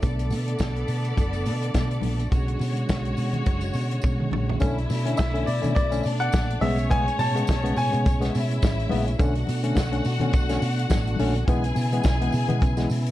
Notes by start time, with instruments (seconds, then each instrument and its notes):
0.01 fingered electric bass B1, tonewheel organ B2 D3 A3, string section B3 A4 D5, kick, closed hi-hat, tambourine, muted conga
0.19 closed hi-hat, tambourine
0.30 fingered electric bass B2, open hi-hat, tambourine, muted conga
0.48 closed hi-hat
0.58 fingered electric bass B1, kick, snare, closed hi-hat, tambourine, high conga
0.76 closed hi-hat
0.88 fingered electric bass B2, open hi-hat, tambourine
1.04 closed hi-hat, tambourine
1.17 fingered electric bass F#1, kick, closed hi-hat, tambourine, muted conga
1.33 closed hi-hat, tambourine
1.45 fingered electric bass B2, open hi-hat, tambourine
1.62 closed hi-hat
1.74 fingered electric bass B2, kick, snare, closed hi-hat, tambourine, high conga
1.91 closed hi-hat
2.02 fingered electric bass A#1, open hi-hat, high conga
2.19 closed hi-hat, tambourine
2.31 fingered electric bass B1, tonewheel organ C#3 G#3, string section G#3 F#4 C#5, kick, closed hi-hat, tambourine, muted conga
2.48 closed hi-hat
2.59 fingered electric bass B2, open hi-hat, tambourine, muted conga
2.77 closed hi-hat, tambourine
2.89 fingered electric bass B1, kick, snare, closed hi-hat, tambourine, high conga
3.05 closed hi-hat
3.17 fingered electric bass B2, open hi-hat, tambourine, muted conga
3.33 closed hi-hat, low conga
3.46 fingered electric bass F#1, kick, closed hi-hat, tambourine, muted conga
3.61 closed hi-hat, tambourine
3.73 fingered electric bass B2, open hi-hat, tambourine
3.91 closed hi-hat
4.01 fingered electric bass B2, kick, high tom, tambourine, high conga
4.20 mid tom
4.31 fingered electric bass A#1, mid tom, high conga
4.49 floor tom
4.60 fingered electric bass B1, tonewheel organ B2 A3 D4, tine electric piano D3 A3 C#4, string section E4 E5, kick, closed hi-hat, tambourine, muted conga
4.78 closed hi-hat
4.89 tine electric piano B2, fingered electric bass B2, open hi-hat, tambourine, muted conga
5.04 tine electric piano D3 A3 C#4, closed hi-hat
5.17 fingered electric bass B1, grand piano E5, kick, snare, closed hi-hat, tambourine, high conga
5.33 tine electric piano D3 A3 C#4, closed hi-hat
5.46 tine electric piano B2, fingered electric bass B2, grand piano D5, open hi-hat, tambourine
5.62 fingered electric bass B2, tine electric piano D3 A3 C#4, closed hi-hat, tambourine, low conga
5.75 fingered electric bass B1, grand piano D5, kick, closed hi-hat, tambourine, muted conga
5.91 tine electric piano D3 A3 C#4, closed hi-hat, tambourine
6.03 fingered electric bass B2, tine electric piano A3 C#4, string section D4 D5, open hi-hat, tambourine
6.20 grand piano F#5, closed hi-hat
6.32 fingered electric bass A#1, kick, snare, closed hi-hat, tambourine, high conga
6.50 closed hi-hat
6.61 fingered electric bass B1, tonewheel organ A2 G#3 C#4, tine electric piano C#3 G#3 B3, string section C#4 C#5, grand piano E5, open hi-hat, high conga
6.78 closed hi-hat, tambourine
6.90 tine electric piano C#3 G#3 B3, grand piano G#5, kick, closed hi-hat, tambourine, muted conga
7.08 closed hi-hat, tambourine
7.19 tine electric piano A2, fingered electric bass B2, grand piano A5, open hi-hat, tambourine, muted conga
7.35 tine electric piano C#3 G#3 B3, closed hi-hat
7.47 fingered electric bass B1, kick, snare, closed hi-hat, tambourine, high conga
7.63 tine electric piano C#3 G#3 B3, closed hi-hat
7.75 tine electric piano A2, fingered electric bass B2, grand piano G#5, open hi-hat, tambourine, muted conga
7.92 fingered electric bass B2, tine electric piano C#3 G#3 B3, closed hi-hat, tambourine
8.05 fingered electric bass B1, tine electric piano A2, kick, closed hi-hat, tambourine, muted conga
8.20 tine electric piano C#3 G#3 B3, snare, closed hi-hat, tambourine
8.32 fingered electric bass B2, tine electric piano G#3 B3, string section E4 E5, open hi-hat, tambourine
8.51 closed hi-hat
8.62 fingered electric bass A1, kick, snare, closed hi-hat, tambourine, high conga
8.80 closed hi-hat
8.89 fingered electric bass A#1, tine electric piano C#3 G#3 B3, open hi-hat, high conga
9.08 closed hi-hat, tambourine
9.18 fingered electric bass B1, tonewheel organ B2 A3 D4, tine electric piano D3 A3 C#4, string section F#4 F#5, kick, closed hi-hat, tambourine, muted conga
9.35 closed hi-hat
9.47 tine electric piano B2, fingered electric bass B2, open hi-hat, tambourine, muted conga
9.63 tine electric piano D3 A3 C#4, closed hi-hat
9.75 fingered electric bass B1, kick, snare, closed hi-hat, tambourine, high conga
9.92 tine electric piano D3 A3 C#4, closed hi-hat
10.05 tine electric piano B2, fingered electric bass B2, open hi-hat, tambourine
10.20 fingered electric bass B2, tine electric piano D3 A3 C#4, closed hi-hat, low conga
10.31 fingered electric bass B1, tine electric piano B2, kick, closed hi-hat, tambourine, muted conga
10.49 tine electric piano D3 A3 C#4, snare, closed hi-hat, tambourine
10.62 fingered electric bass B2, tine electric piano A3 C#4, open hi-hat, tambourine
10.79 closed hi-hat
10.90 fingered electric bass A1, kick, snare, closed hi-hat, tambourine, high conga
11.07 closed hi-hat
11.16 fingered electric bass A#1, tine electric piano D3 A3 C#4, open hi-hat, high conga
11.36 closed hi-hat, tambourine
11.47 fingered electric bass B1, tonewheel organ C#3 B3 E4, tine electric piano E3 G#3 B3, string section G#4 G#5, kick, closed hi-hat, tambourine, muted conga
11.64 closed hi-hat, tambourine
11.75 fingered electric bass B2, tine electric piano C#3, open hi-hat, tambourine, muted conga
11.92 tine electric piano E3 G#3 B3, closed hi-hat, tambourine
12.03 fingered electric bass B1, kick, snare, closed hi-hat, tambourine, high conga
12.20 tine electric piano E3 G#3 B3, closed hi-hat
12.32 fingered electric bass B2, tine electric piano C#3, open hi-hat, tambourine, muted conga
12.48 fingered electric bass B2, tine electric piano E3 G#3 B3, closed hi-hat, low conga
12.61 fingered electric bass B1, tine electric piano C#3, kick, closed hi-hat, tambourine, muted conga
12.77 tine electric piano E3 G#3 B3, snare, closed hi-hat, tambourine
12.90 fingered electric bass B2, tine electric piano G#3 B3, open hi-hat, tambourine
13.06 closed hi-hat